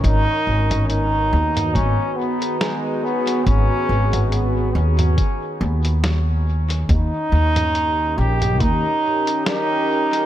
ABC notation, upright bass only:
X:1
M:4/4
L:1/8
Q:"Swing 16ths" 1/4=70
K:G#m
V:1 name="Upright bass" clef=bass
G,,, G,,,2 D,, G,,, z3 | G,,, G,,,2 D,, z D,,3 | D,, D,,2 A,,, D,, z3 |]